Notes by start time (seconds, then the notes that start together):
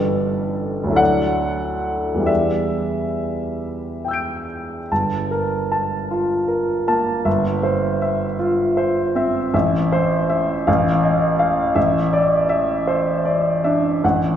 Already playing: G1 G3 D4 A4 B4
0.84 D2 F#3
0.90 E4 A4
0.95 D5 F#5
2.14 E2 G3
2.19 E4 G4
2.26 D5 E5
4.05 G5 E6
4.11 G6 D7
4.92 G1 A5
5.31 A#4
5.72 A5
6.11 F4
6.48 A#4
6.88 A#3 A5
7.25 G1 E5
7.63 C5
8.02 E5
8.39 F4
8.77 C5
9.15 C4 E5
9.54 A1 E5
9.92 C5
10.30 E5
10.67 A1 F5
11.03 D#5
11.39 F5
11.75 A1 E5
12.13 D5
12.49 E5
12.87 C5
13.25 D5
13.64 D4 E5
14.04 A1 F#5